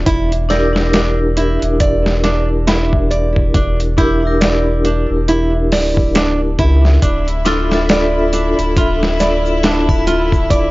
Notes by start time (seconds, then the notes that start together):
0.06 E1 E4, kick, closed hi-hat
0.32 closed hi-hat
0.49 D4 E4 G4 A#4 D5, snare, closed hi-hat
0.73 D4 E4, snare
0.77 G4 A#4
0.93 D4, snare, closed hi-hat
1.37 E4, closed hi-hat
1.62 E1, closed hi-hat
1.80 D5, kick, closed hi-hat
2.06 snare
2.24 D4, snare, closed hi-hat
2.67 E4, snare, closed hi-hat
2.93 kick
3.11 D5, closed hi-hat
3.36 kick
3.54 E1 D4, kick, closed hi-hat
3.80 closed hi-hat
3.97 D4 E4 G4 A#4, kick, closed hi-hat
4.21 D4 E4
4.25 G4 A#4
4.41 D5, snare, closed hi-hat
4.85 D4, closed hi-hat
5.11 E1
5.28 E4, closed hi-hat
5.72 D1 D5, snare, open hi-hat
5.97 kick
6.15 D4, snare, closed hi-hat
6.59 C#2 E4, kick, closed hi-hat
6.85 snare
7.02 D1 D4 E4 E5, kick, closed hi-hat, shaker
7.28 closed hi-hat
7.45 D4 E4 F4 A4, snare, closed hi-hat, shaker
7.69 D4 E5, snare, shaker
7.73 F4 A4
7.89 D5, snare, closed hi-hat, shaker
8.33 D4, closed hi-hat, shaker
8.59 D1, closed hi-hat, shaker
8.76 F4, kick, closed hi-hat, shaker
9.03 snare
9.20 D5, snare, closed hi-hat, shaker
9.46 shaker
9.63 D4, snare, closed hi-hat, shaker
9.89 kick, triangle
10.07 F4, closed hi-hat, shaker
10.32 kick, shaker
10.50 D1 D5, kick, closed hi-hat, shaker